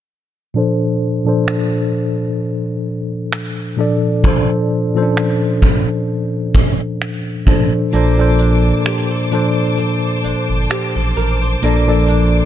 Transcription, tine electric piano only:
0.54 A#2 F3 D4 A4 C5
1.25 A#2 F3 D4 A4
1.29 C5
3.77 A#2 F3 D4 A4 D5
4.23 A#2 F3 D4 A4 C5
4.94 A#2 F3 C#4 A4 C5
5.02 D4
7.46 A#2 F3 D4 A4 C5
7.92 A#2 F3 D4 A4 C5
8.17 A#2 F3 D4 A4 C5
9.31 A#2 F3 D4 A4 C5
11.62 A#2 F3 D4 A4 D5
11.86 A#2 F3 D4 A4 D5

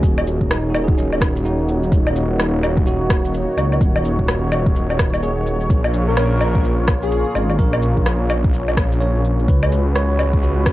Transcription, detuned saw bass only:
0.03 D#1
0.41 D#1
1.92 D#1
3.57 C#2
3.81 D#1
4.19 D#1
5.70 A#1
7.35 G#1
7.59 A#1
7.97 A#1
9.48 C#2

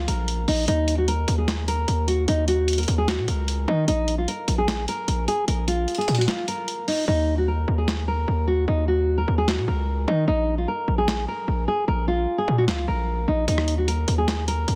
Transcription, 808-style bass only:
0.08 A#1
0.48 A#1
0.68 D#2
1.28 D#2
1.88 D#2
2.28 D#2
2.88 D#2
3.18 A#2
3.28 C#2
3.68 D#3
3.88 A#1
4.48 A#1
5.08 A#1
5.48 A#1
6.08 A#2
7.08 D#2
7.68 D#2
8.28 D#2
8.68 D#2
9.28 D#2
9.58 A#2
9.68 C#2
10.08 D#3
10.28 A#1
10.88 A#1
11.48 A#1
11.88 A#1
12.48 A#2
12.68 C#2
12.88 A#1
13.28 A#1
13.48 D#2
14.08 D#2
14.68 D#2

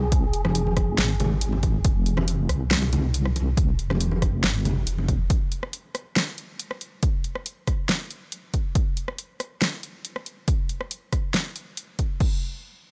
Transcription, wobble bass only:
Already playing: C2
0.34 F1
0.98 G#1
1.85 F1
2.49 C2
3.79 F1
4.44 G1
4.87 F1

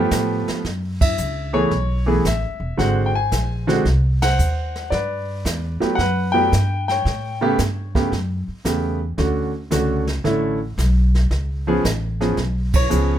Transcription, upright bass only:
0.11 A2
0.48 muted upright bass stroke
0.65 F#2
1.18 C#2
1.71 B1
2.25 A1
2.42 F#1
2.60 E1
2.79 G#1
3.32 A#1
3.85 C2
4.39 D#2
4.91 G2
5.45 E2
5.83 muted upright bass stroke
5.98 F#2
6.52 G2
7.05 A2
7.59 G2
8.12 F#2
8.48 muted upright bass stroke
8.65 E2
9.18 D2
9.71 C#2
10.24 A1
10.78 B1
11.31 C#2
11.84 A1
12.38 B1
12.92 C#2

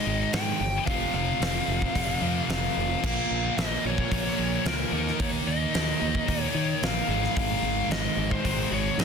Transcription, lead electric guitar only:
Already playing: D#5
0.33 G5
0.87 F5
1.14 F5
2.51 F5
3.05 F5
3.57 D#5
3.86 C#5
4.12 C#5
4.67 A#4
5.20 C#5
5.47 D#5
6.41 C#5
6.84 F5
7.37 F5
7.91 D#5
8.32 C5
8.73 C#5
9.00 D#5

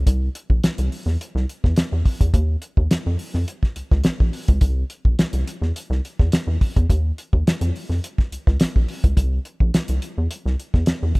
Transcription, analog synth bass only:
0.07 C2
0.50 A#1
0.64 C2
0.79 C2
1.06 E2
1.35 C2
1.64 E2
1.77 E2
1.92 E2
2.21 E2
2.34 D#2
2.77 D#2
2.91 F2
3.06 F2
3.34 F2
3.76 C#2
3.91 C#2
4.05 A#1
4.20 A#1
4.49 C#2
4.61 C2
5.05 A#1
5.19 C2
5.33 C2
5.62 E2
5.90 C2
6.20 E2
6.32 E2
6.47 E2
6.76 E2
6.89 D#2
7.33 D#2
7.46 F2
7.61 F2
7.89 F2
8.32 C#2
8.47 C#2
8.60 A#1
8.76 A#1
9.04 C#2
9.17 C2
9.61 A#1
9.74 C2
9.89 C2
10.18 E2
10.46 C2
10.74 E2
10.87 E2
11.03 E2

